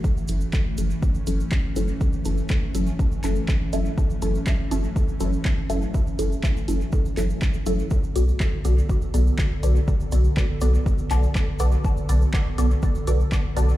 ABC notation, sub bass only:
X:1
M:4/4
L:1/8
Q:1/4=122
K:F#m
V:1 name="Sub bass" clef=bass
z F,,, z F,,, z F,,, z F,,, | z F,,, z F,,, z F,,, z F,,, | z F,,, z F,,, z F,,, z F,,, | z F,,, z F,,, z F,,, z F,,, |
z B,,, z B,,, z B,,, z B,,, | z B,,, z B,,, z B,,, z B,,, | z B,,, z B,,, z B,,, z B,,, |]